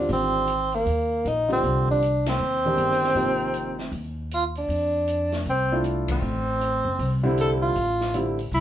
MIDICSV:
0, 0, Header, 1, 5, 480
1, 0, Start_track
1, 0, Tempo, 382653
1, 129, Time_signature, 4, 2, 24, 8
1, 10792, End_track
2, 0, Start_track
2, 0, Title_t, "Tenor saxophone"
2, 0, Program_c, 0, 66
2, 161, Note_on_c, 0, 60, 85
2, 942, Note_on_c, 0, 58, 82
2, 960, Note_off_c, 0, 60, 0
2, 1606, Note_on_c, 0, 63, 75
2, 1625, Note_off_c, 0, 58, 0
2, 1894, Note_off_c, 0, 63, 0
2, 1917, Note_on_c, 0, 60, 81
2, 2345, Note_off_c, 0, 60, 0
2, 2399, Note_on_c, 0, 62, 85
2, 2864, Note_on_c, 0, 60, 90
2, 2883, Note_off_c, 0, 62, 0
2, 5128, Note_off_c, 0, 60, 0
2, 5444, Note_on_c, 0, 65, 73
2, 5574, Note_off_c, 0, 65, 0
2, 5750, Note_on_c, 0, 62, 81
2, 6818, Note_off_c, 0, 62, 0
2, 6897, Note_on_c, 0, 60, 75
2, 7322, Note_off_c, 0, 60, 0
2, 7672, Note_on_c, 0, 60, 82
2, 9218, Note_off_c, 0, 60, 0
2, 9290, Note_on_c, 0, 69, 82
2, 9419, Note_off_c, 0, 69, 0
2, 9563, Note_on_c, 0, 65, 86
2, 10346, Note_off_c, 0, 65, 0
2, 10717, Note_on_c, 0, 64, 76
2, 10792, Note_off_c, 0, 64, 0
2, 10792, End_track
3, 0, Start_track
3, 0, Title_t, "Grand piano"
3, 0, Program_c, 1, 0
3, 0, Note_on_c, 1, 50, 46
3, 0, Note_on_c, 1, 55, 42
3, 0, Note_on_c, 1, 60, 46
3, 0, Note_on_c, 1, 65, 58
3, 575, Note_off_c, 1, 55, 0
3, 578, Note_off_c, 1, 50, 0
3, 580, Note_off_c, 1, 65, 0
3, 581, Note_off_c, 1, 60, 0
3, 1864, Note_on_c, 1, 50, 61
3, 1874, Note_on_c, 1, 55, 55
3, 1878, Note_on_c, 1, 60, 53
3, 1880, Note_on_c, 1, 65, 66
3, 2490, Note_off_c, 1, 50, 0
3, 2495, Note_off_c, 1, 55, 0
3, 2497, Note_off_c, 1, 60, 0
3, 2498, Note_off_c, 1, 65, 0
3, 3326, Note_on_c, 1, 51, 58
3, 3329, Note_on_c, 1, 56, 50
3, 3329, Note_on_c, 1, 67, 63
3, 3333, Note_on_c, 1, 62, 53
3, 3941, Note_off_c, 1, 51, 0
3, 3942, Note_off_c, 1, 67, 0
3, 3943, Note_off_c, 1, 56, 0
3, 3944, Note_off_c, 1, 62, 0
3, 3961, Note_on_c, 1, 53, 50
3, 3963, Note_on_c, 1, 58, 48
3, 3965, Note_on_c, 1, 48, 51
3, 3969, Note_on_c, 1, 63, 61
3, 4691, Note_off_c, 1, 53, 0
3, 4692, Note_off_c, 1, 58, 0
3, 4693, Note_off_c, 1, 48, 0
3, 4695, Note_off_c, 1, 63, 0
3, 7175, Note_on_c, 1, 64, 65
3, 7176, Note_on_c, 1, 65, 74
3, 7177, Note_on_c, 1, 62, 64
3, 7178, Note_on_c, 1, 57, 59
3, 7785, Note_off_c, 1, 64, 0
3, 7786, Note_off_c, 1, 62, 0
3, 7786, Note_off_c, 1, 65, 0
3, 7787, Note_off_c, 1, 57, 0
3, 9075, Note_on_c, 1, 50, 78
3, 9075, Note_on_c, 1, 55, 72
3, 9077, Note_on_c, 1, 64, 78
3, 9080, Note_on_c, 1, 60, 66
3, 9695, Note_off_c, 1, 50, 0
3, 9695, Note_off_c, 1, 55, 0
3, 9696, Note_off_c, 1, 64, 0
3, 9697, Note_off_c, 1, 60, 0
3, 10212, Note_on_c, 1, 50, 55
3, 10221, Note_on_c, 1, 60, 52
3, 10222, Note_on_c, 1, 55, 50
3, 10224, Note_on_c, 1, 64, 65
3, 10486, Note_off_c, 1, 50, 0
3, 10491, Note_off_c, 1, 55, 0
3, 10491, Note_off_c, 1, 60, 0
3, 10492, Note_off_c, 1, 64, 0
3, 10792, End_track
4, 0, Start_track
4, 0, Title_t, "Upright bass"
4, 0, Program_c, 2, 32
4, 112, Note_on_c, 2, 32, 82
4, 1033, Note_off_c, 2, 32, 0
4, 1077, Note_on_c, 2, 39, 70
4, 1529, Note_off_c, 2, 39, 0
4, 1567, Note_on_c, 2, 34, 68
4, 2015, Note_off_c, 2, 34, 0
4, 2049, Note_on_c, 2, 36, 75
4, 2962, Note_off_c, 2, 36, 0
4, 3004, Note_on_c, 2, 39, 70
4, 3454, Note_off_c, 2, 39, 0
4, 3480, Note_on_c, 2, 31, 70
4, 3932, Note_off_c, 2, 31, 0
4, 3951, Note_on_c, 2, 32, 75
4, 4873, Note_off_c, 2, 32, 0
4, 4913, Note_on_c, 2, 39, 72
4, 5834, Note_off_c, 2, 39, 0
4, 5878, Note_on_c, 2, 41, 71
4, 6796, Note_off_c, 2, 41, 0
4, 6845, Note_on_c, 2, 36, 76
4, 7760, Note_off_c, 2, 36, 0
4, 7800, Note_on_c, 2, 33, 76
4, 8541, Note_off_c, 2, 33, 0
4, 8587, Note_on_c, 2, 30, 66
4, 8753, Note_off_c, 2, 30, 0
4, 8767, Note_on_c, 2, 36, 73
4, 9680, Note_off_c, 2, 36, 0
4, 9733, Note_on_c, 2, 33, 78
4, 10643, Note_off_c, 2, 33, 0
4, 10682, Note_on_c, 2, 36, 75
4, 10792, Note_off_c, 2, 36, 0
4, 10792, End_track
5, 0, Start_track
5, 0, Title_t, "Drums"
5, 118, Note_on_c, 9, 46, 39
5, 244, Note_off_c, 9, 46, 0
5, 595, Note_on_c, 9, 42, 50
5, 721, Note_off_c, 9, 42, 0
5, 908, Note_on_c, 9, 46, 36
5, 1034, Note_off_c, 9, 46, 0
5, 1085, Note_on_c, 9, 46, 39
5, 1210, Note_off_c, 9, 46, 0
5, 1576, Note_on_c, 9, 42, 44
5, 1701, Note_off_c, 9, 42, 0
5, 1883, Note_on_c, 9, 46, 33
5, 2008, Note_off_c, 9, 46, 0
5, 2052, Note_on_c, 9, 46, 40
5, 2177, Note_off_c, 9, 46, 0
5, 2354, Note_on_c, 9, 36, 45
5, 2480, Note_off_c, 9, 36, 0
5, 2538, Note_on_c, 9, 42, 48
5, 2664, Note_off_c, 9, 42, 0
5, 2838, Note_on_c, 9, 51, 58
5, 2841, Note_on_c, 9, 38, 72
5, 2964, Note_off_c, 9, 51, 0
5, 2966, Note_off_c, 9, 38, 0
5, 3485, Note_on_c, 9, 42, 49
5, 3611, Note_off_c, 9, 42, 0
5, 3654, Note_on_c, 9, 38, 25
5, 3780, Note_off_c, 9, 38, 0
5, 3794, Note_on_c, 9, 46, 33
5, 3808, Note_on_c, 9, 38, 37
5, 3919, Note_off_c, 9, 46, 0
5, 3933, Note_off_c, 9, 38, 0
5, 3965, Note_on_c, 9, 46, 41
5, 4090, Note_off_c, 9, 46, 0
5, 4437, Note_on_c, 9, 42, 54
5, 4562, Note_off_c, 9, 42, 0
5, 4748, Note_on_c, 9, 38, 42
5, 4873, Note_off_c, 9, 38, 0
5, 4923, Note_on_c, 9, 46, 34
5, 5048, Note_off_c, 9, 46, 0
5, 5409, Note_on_c, 9, 42, 48
5, 5535, Note_off_c, 9, 42, 0
5, 5711, Note_on_c, 9, 46, 32
5, 5836, Note_off_c, 9, 46, 0
5, 5893, Note_on_c, 9, 46, 41
5, 6019, Note_off_c, 9, 46, 0
5, 6367, Note_on_c, 9, 42, 48
5, 6493, Note_off_c, 9, 42, 0
5, 6676, Note_on_c, 9, 46, 35
5, 6678, Note_on_c, 9, 38, 50
5, 6801, Note_off_c, 9, 46, 0
5, 6804, Note_off_c, 9, 38, 0
5, 6857, Note_on_c, 9, 46, 38
5, 6983, Note_off_c, 9, 46, 0
5, 7326, Note_on_c, 9, 42, 42
5, 7451, Note_off_c, 9, 42, 0
5, 7628, Note_on_c, 9, 51, 69
5, 7635, Note_on_c, 9, 36, 69
5, 7754, Note_off_c, 9, 51, 0
5, 7760, Note_off_c, 9, 36, 0
5, 8293, Note_on_c, 9, 42, 50
5, 8418, Note_off_c, 9, 42, 0
5, 8771, Note_on_c, 9, 46, 39
5, 8897, Note_off_c, 9, 46, 0
5, 9251, Note_on_c, 9, 42, 48
5, 9377, Note_off_c, 9, 42, 0
5, 9730, Note_on_c, 9, 46, 41
5, 9855, Note_off_c, 9, 46, 0
5, 10041, Note_on_c, 9, 38, 49
5, 10167, Note_off_c, 9, 38, 0
5, 10211, Note_on_c, 9, 42, 49
5, 10336, Note_off_c, 9, 42, 0
5, 10521, Note_on_c, 9, 46, 36
5, 10646, Note_off_c, 9, 46, 0
5, 10698, Note_on_c, 9, 46, 36
5, 10792, Note_off_c, 9, 46, 0
5, 10792, End_track
0, 0, End_of_file